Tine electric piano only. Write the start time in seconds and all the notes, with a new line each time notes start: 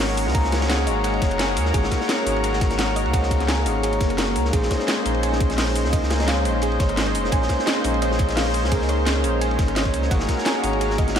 Already playing: A#3 D#4 F#4 G#4 C#5
0.31 A#3 D#4 F#4
0.36 G#4 C5
0.83 A#3 D#4 F#4
0.88 G#4 C#5
1.71 A#3 D#4 F#4
1.76 G#4 C#5
2.23 A#3 D#4 F#4
2.28 G#4 C#5
3.10 A#3 D#4 F#4
3.15 G#4 C5
3.62 A#3 D#4 F#4
3.68 G#4 C#5
4.50 A#3 C#4 D#4
4.55 G#4 C5
5.02 A#3 C#4 D#4
5.07 G#4 C5
5.89 A#3 C#4 D#4
5.94 G#4 A#4
6.42 A#3 C#4 D#4
6.47 G#4 C5
7.29 A#3 C#4 D#4
7.34 G#4 C5
7.81 A#3 C#4 D#4
7.86 G#4 C5
8.68 A#3 C#4 D#4
8.74 G#4 A#4
9.21 A#3 C#4 D#4
9.26 G#4 C5
10.08 A#3 D#4 F#4
10.13 G#4 C#5
10.60 A#3 D#4 F#4
10.65 G#4 C#5